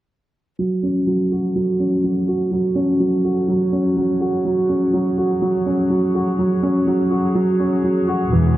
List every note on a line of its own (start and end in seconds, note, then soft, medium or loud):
0.58 8.32 F#3 medium
0.58 0.81 F#3 medium
0.77 8.57 F#4 medium
0.83 1.06 C#4 medium
0.94 4.32 A4 medium
1.07 1.30 F#3 medium
1.32 1.45 F#4 medium
1.32 8.57 C#5 medium
1.55 1.78 F#3 medium
1.80 2.02 C#4 medium
2.04 2.27 F#3 medium
2.27 2.41 F#4 medium
2.51 2.74 F#3 medium
2.75 2.99 C#4 medium
3.00 3.23 F#3 medium
3.24 3.47 F#4 medium
3.48 3.71 F#3 medium
3.72 3.96 C#4 medium
3.97 4.20 F#3 medium
4.17 4.35 F#4 medium
4.17 8.57 G#4 medium
4.45 4.68 F#3 medium
4.69 4.92 C#4 medium
4.93 5.17 F#3 medium
5.18 5.32 F#4 medium
5.42 5.65 F#3 medium
5.66 5.89 C#4 medium
5.90 6.13 F#3 medium
6.15 6.28 F#4 medium
6.39 6.62 F#3 medium
6.63 6.86 C#4 medium
6.87 7.10 F#3 medium
7.11 7.34 F#4 medium
7.35 7.58 F#3 medium
7.60 7.83 C#4 medium
7.84 8.07 F#3 medium
8.08 8.22 F#4 medium
8.32 8.57 E1 medium
8.32 8.57 E3 medium
8.32 8.55 E3 medium